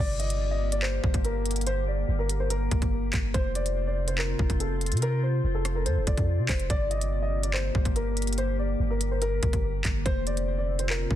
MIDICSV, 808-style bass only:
0, 0, Header, 1, 2, 480
1, 0, Start_track
1, 0, Key_signature, -2, "minor"
1, 0, Tempo, 419580
1, 1905, Time_signature, 4, 2, 24, 8
1, 12761, End_track
2, 0, Start_track
2, 0, Title_t, "808-style bass"
2, 0, Program_c, 0, 38
2, 0, Note_on_c, 0, 31, 113
2, 1139, Note_off_c, 0, 31, 0
2, 1185, Note_on_c, 0, 31, 103
2, 1300, Note_off_c, 0, 31, 0
2, 1305, Note_on_c, 0, 31, 101
2, 2341, Note_off_c, 0, 31, 0
2, 2384, Note_on_c, 0, 31, 108
2, 3076, Note_off_c, 0, 31, 0
2, 3105, Note_on_c, 0, 31, 106
2, 3220, Note_off_c, 0, 31, 0
2, 3225, Note_on_c, 0, 31, 107
2, 3570, Note_off_c, 0, 31, 0
2, 3585, Note_on_c, 0, 31, 107
2, 3815, Note_off_c, 0, 31, 0
2, 3825, Note_on_c, 0, 29, 115
2, 4979, Note_off_c, 0, 29, 0
2, 5025, Note_on_c, 0, 29, 102
2, 5137, Note_off_c, 0, 29, 0
2, 5144, Note_on_c, 0, 29, 110
2, 5623, Note_on_c, 0, 48, 103
2, 5640, Note_off_c, 0, 29, 0
2, 6194, Note_off_c, 0, 48, 0
2, 6223, Note_on_c, 0, 29, 109
2, 6703, Note_on_c, 0, 41, 95
2, 6720, Note_off_c, 0, 29, 0
2, 6824, Note_on_c, 0, 29, 104
2, 6841, Note_off_c, 0, 41, 0
2, 6938, Note_off_c, 0, 29, 0
2, 6944, Note_on_c, 0, 29, 109
2, 7057, Note_off_c, 0, 29, 0
2, 7064, Note_on_c, 0, 41, 110
2, 7302, Note_on_c, 0, 48, 100
2, 7319, Note_off_c, 0, 41, 0
2, 7417, Note_off_c, 0, 48, 0
2, 7425, Note_on_c, 0, 29, 108
2, 7655, Note_off_c, 0, 29, 0
2, 7664, Note_on_c, 0, 31, 116
2, 8818, Note_off_c, 0, 31, 0
2, 8864, Note_on_c, 0, 31, 107
2, 8977, Note_off_c, 0, 31, 0
2, 8984, Note_on_c, 0, 31, 103
2, 10021, Note_off_c, 0, 31, 0
2, 10063, Note_on_c, 0, 31, 107
2, 10755, Note_off_c, 0, 31, 0
2, 10784, Note_on_c, 0, 31, 102
2, 10897, Note_off_c, 0, 31, 0
2, 10903, Note_on_c, 0, 31, 102
2, 11249, Note_off_c, 0, 31, 0
2, 11265, Note_on_c, 0, 31, 107
2, 11495, Note_off_c, 0, 31, 0
2, 11505, Note_on_c, 0, 29, 113
2, 12659, Note_off_c, 0, 29, 0
2, 12705, Note_on_c, 0, 29, 108
2, 12761, Note_off_c, 0, 29, 0
2, 12761, End_track
0, 0, End_of_file